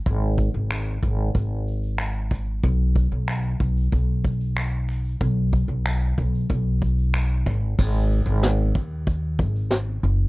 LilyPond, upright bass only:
\new Staff \with { instrumentName = "Upright bass" } { \clef bass \time 4/4 \key gis \phrygian \tempo 4 = 93 gis,,8. gis,,8. gis,,8 gis,,2 | b,,8. b,,8. b,,8 b,,2 | b,,8. b,,8. b,,8 b,,4. gis,,8 | gis,,8. gis,,8. r4 gis,,4 fis,,8 | }